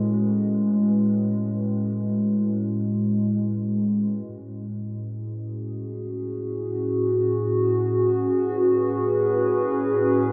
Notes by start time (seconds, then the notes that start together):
Already playing: A2 G#3 C#4 F#4 B4
4.29 A2
4.78 G#4
5.08 C#4
5.20 F#4
7.89 B4